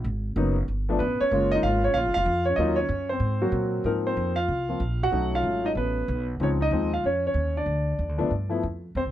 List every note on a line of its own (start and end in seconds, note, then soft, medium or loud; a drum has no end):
0.04 0.35 G#1 medium
0.36 0.67 F#1 medium
0.36 0.55 F#3 medium
0.36 0.55 A#3 medium
0.36 0.55 B3 medium
0.36 0.55 D#4 medium
0.68 0.99 G1 medium
0.89 0.99 F3 medium
0.89 0.99 A3 medium
0.89 0.99 B3 medium
0.89 0.99 D4 medium
0.99 1.19 A1 medium
0.99 1.19 B3 medium
0.99 1.20 B4 medium
1.21 1.31 C#4 medium
1.21 1.50 C#5 loud
1.21 muted upright bass stroke soft
1.31 1.62 F#1 medium
1.31 1.80 G#3 medium
1.31 1.79 A#3 medium
1.31 1.80 C#4 medium
1.31 1.65 F4 medium
1.51 1.64 D#4 medium
1.51 1.63 D#5 loud
1.63 1.94 G#1 medium
1.63 1.83 F4 medium
1.63 1.82 F5 loud
1.84 1.96 C#4 medium
1.84 1.95 C#5 medium
1.94 2.06 A#1 medium
1.94 2.15 F4 medium
1.94 2.13 F5 loud
2.06 2.16 F#1 medium
2.14 2.25 F1 medium
2.14 2.46 F4 medium
2.14 2.44 F5 loud
2.26 2.57 F2 medium
2.45 2.57 C#5 medium
2.49 2.57 C#4 medium
2.56 2.88 D#2 medium
2.56 2.77 F#3 medium
2.56 2.76 A#3 medium
2.56 2.77 C#4 medium
2.56 2.77 F4 medium
2.56 2.78 D#5 medium
2.61 2.78 D#4 medium
2.76 3.07 C#5 medium
2.80 3.09 C#4 medium
2.89 3.19 F#2 medium
3.09 3.40 C4 medium
3.09 3.50 C5 medium
3.20 3.51 G#2 medium
3.41 3.82 F#3 medium
3.41 3.83 A#3 medium
3.41 3.83 C4 medium
3.41 3.83 F#4 medium
3.52 3.83 A#2 medium
3.84 4.15 G#2 medium
3.84 4.33 F3 medium
3.84 4.33 A#3 medium
3.84 4.05 C4 medium
3.84 4.33 D#4 medium
3.84 3.91 A#4 medium
4.07 4.36 C4 medium
4.07 4.36 C5 medium
4.17 4.47 F2 medium
4.36 4.68 F4 medium
4.36 5.02 F5 loud
4.48 4.79 C2 medium
4.69 4.79 F3 medium
4.69 4.79 A#3 soft
4.69 4.80 C4 soft
4.69 4.80 F4 medium
4.80 5.11 A#1 medium
5.03 5.32 F#4 medium
5.03 5.35 F#5 loud
5.11 5.43 B1 medium
5.11 6.00 F#3 medium
5.11 6.00 A3 soft
5.11 6.01 C#4 soft
5.11 5.63 D#4 medium
5.35 5.63 F4 medium
5.35 5.67 F5 medium
5.43 5.74 G#1 medium
5.65 5.70 D#4 medium
5.65 5.71 D#5 medium
5.75 6.06 A1 medium
5.75 6.25 B3 medium
5.75 6.25 B4 medium
6.08 6.39 B1 medium
6.40 6.70 C#2 medium
6.40 6.58 F3 medium
6.40 6.58 G#3 soft
6.40 6.58 C4 medium
6.40 6.48 C#4 medium
6.40 6.59 D#4 medium
6.40 6.48 C#5 medium
6.61 6.71 D#4 medium
6.61 6.91 D#5 medium
6.71 7.02 D#2 medium
6.71 6.90 F3 medium
6.71 6.90 G#3 medium
6.71 6.90 C4 medium
6.71 6.90 D#4 medium
6.93 7.03 F4 medium
6.93 7.03 F5 medium
7.04 7.33 F2 medium
7.04 7.23 C#4 medium
7.04 7.23 C#5 medium
7.27 7.55 C#4 medium
7.27 7.58 C#5 medium
7.34 7.65 D#2 medium
7.57 8.17 D4 medium
7.57 8.47 D5 medium
7.66 7.97 D2 medium
7.99 8.09 E2 medium
8.09 8.19 D2 medium
8.18 8.30 C2 medium
8.18 8.28 F3 medium
8.18 8.29 A3 medium
8.18 8.29 B3 medium
8.18 8.29 D4 medium
8.31 8.61 G2 medium
8.49 8.60 F3 medium
8.49 8.60 A3 medium
8.49 8.60 B3 medium
8.49 8.61 E4 medium
8.63 8.93 F2 medium
8.95 9.07 E2 medium
8.95 9.01 C4 medium
8.95 9.02 C5 medium
9.06 9.12 C2 medium